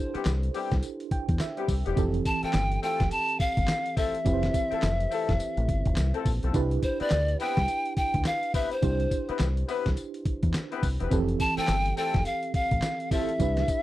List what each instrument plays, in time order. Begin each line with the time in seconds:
Already playing: fm electric piano D4 E4 G4 A4 C5, pan flute C5
0.14 horn section G3 B3 C4 E4 G4, muted fingered electric bass stroke, closed hi-hat
0.25 fingered electric bass C2, snare, clap, closed hi-hat, tambourine
0.43 closed hi-hat
0.53 horn section G3 B3 C4 E4 G4, open hi-hat, tambourine
0.72 fingered electric bass C2, kick, snare, closed hi-hat
0.83 closed hi-hat, tambourine
1.00 closed hi-hat
1.11 fm electric piano G5, muted fingered electric bass stroke, kick, closed hi-hat
1.29 fingered electric bass E2, kick, closed hi-hat
1.39 fm electric piano E5, snare, clap, closed hi-hat, tambourine
1.57 horn section G3 B3 C4 E4 G4, closed hi-hat
1.68 fingered electric bass C2, kick, open hi-hat, tambourine
1.86 fingered electric bass E1, horn section G3 B3 C4 E4 G4, closed hi-hat
1.96 fingered electric bass F1, fm electric piano E3 C4 G4 A4, kick, closed hi-hat, tambourine
2.14 closed hi-hat
2.25 pan flute A5, kick, closed hi-hat, tambourine
2.43 horn section A3 C4 E4 F4 A4, pan flute G5, muted fingered electric bass stroke, closed hi-hat
2.53 fingered electric bass G1, snare, clap, closed hi-hat, tambourine
2.72 closed hi-hat
2.82 horn section A3 C4 E4 F4 A4, pan flute G5, open hi-hat, tambourine
3.00 fingered electric bass F1, kick, snare, closed hi-hat
3.11 pan flute A5, closed hi-hat, tambourine
3.29 closed hi-hat
3.40 pan flute F5, muted fingered electric bass stroke, kick, closed hi-hat
3.57 fingered electric bass G1, kick, closed hi-hat
3.68 snare, clap, closed hi-hat, tambourine
3.86 closed hi-hat
3.97 horn section A3 C4 E4 F4 A4, pan flute E5, kick, open hi-hat, tambourine
4.15 closed hi-hat
4.25 fingered electric bass F1, fm electric piano C4 E4 G4 B4, kick, closed hi-hat, tambourine
4.34 fm electric piano C5
4.43 snare, closed hi-hat
4.54 kick, closed hi-hat, tambourine
4.71 horn section A3 C4 E4 F4 A4, muted fingered electric bass stroke, closed hi-hat
4.82 fingered electric bass F1, snare, clap, closed hi-hat, tambourine
5.00 closed hi-hat
5.11 horn section A3 C4 E4 F4 A4, open hi-hat, tambourine
5.29 fingered electric bass F1, kick, snare, closed hi-hat
5.40 closed hi-hat, tambourine
5.57 fingered electric bass A1, closed hi-hat
5.68 fingered electric bass G1, kick, closed hi-hat
5.85 fingered electric bass F1, kick, closed hi-hat
5.96 fingered electric bass C2, snare, clap, closed hi-hat, tambourine
6.14 horn section A3 C4 E4 F4 A4, closed hi-hat
6.25 fingered electric bass A#1, kick, open hi-hat, tambourine
6.43 fingered electric bass B1, horn section A3 C4 E4 F4 A4, closed hi-hat
6.53 fingered electric bass C2, fm electric piano D4 E4 G4 B4, kick, closed hi-hat, tambourine
6.71 closed hi-hat
6.82 pan flute C5, kick, closed hi-hat, tambourine
7.00 horn section B3 C4 E4 G4 B4, pan flute D5, muted fingered electric bass stroke, closed hi-hat
7.10 fingered electric bass D2, snare, clap, closed hi-hat, tambourine
7.28 closed hi-hat
7.40 horn section B3 C4 E4 G4 B4, pan flute G5, open hi-hat, tambourine
7.57 fingered electric bass C2, kick, snare, closed hi-hat
7.68 closed hi-hat, tambourine
7.85 closed hi-hat
7.97 pan flute G5, muted fingered electric bass stroke, kick, closed hi-hat
8.14 fingered electric bass D2, kick, closed hi-hat
8.25 pan flute F5, snare, clap, closed hi-hat, tambourine
8.43 closed hi-hat
8.54 horn section B3 C4 E4 G4 B4, pan flute E5, kick, open hi-hat, tambourine
8.71 pan flute C5, closed hi-hat
8.82 fingered electric bass C2, fm electric piano D4 E4 G4 C5, kick, closed hi-hat, tambourine
9.00 closed hi-hat
9.11 kick, closed hi-hat, tambourine
9.28 horn section B3 C4 E4 G4 B4, muted fingered electric bass stroke, closed hi-hat
9.39 fingered electric bass C2, snare, clap, closed hi-hat, tambourine
9.57 closed hi-hat
9.68 horn section B3 C4 E4 G4 B4, open hi-hat, tambourine
9.86 fingered electric bass C2, kick, snare, closed hi-hat
9.97 closed hi-hat, tambourine
10.14 closed hi-hat
10.25 muted fingered electric bass stroke, kick, closed hi-hat
10.43 fingered electric bass E2, kick, closed hi-hat
10.54 snare, clap, closed hi-hat, tambourine
10.71 horn section B3 C4 E4 G4 B4, closed hi-hat
10.83 fingered electric bass C2, kick, open hi-hat, tambourine
10.99 fingered electric bass E1, horn section B3 C4 E4 G4 B4, closed hi-hat
11.10 fingered electric bass F1, fm electric piano E3 C4 G4 A4, kick, closed hi-hat, tambourine
11.28 closed hi-hat
11.40 pan flute A5, kick, closed hi-hat, tambourine
11.57 horn section A3 C4 E4 F4 A4, pan flute G5, muted fingered electric bass stroke, closed hi-hat
11.68 fingered electric bass G1, snare, clap, closed hi-hat, tambourine
11.86 closed hi-hat
11.97 horn section A3 C4 E4 F4 A4, pan flute G5, open hi-hat, tambourine
12.14 fingered electric bass F1, kick, snare, closed hi-hat
12.25 pan flute F5, closed hi-hat, tambourine
12.43 closed hi-hat
12.54 pan flute F5, muted fingered electric bass stroke, kick, closed hi-hat
12.71 fingered electric bass A1, kick, closed hi-hat
12.82 snare, clap, closed hi-hat, tambourine
13.00 closed hi-hat
13.11 horn section A3 C4 E4 F4 A4, fm electric piano C4 E4 G4 A4, pan flute E5, kick, open hi-hat, tambourine
13.29 closed hi-hat
13.39 fingered electric bass C2, fm electric piano D4 E4 G4 B4, kick, closed hi-hat, tambourine
13.57 snare, closed hi-hat
13.68 kick, closed hi-hat, tambourine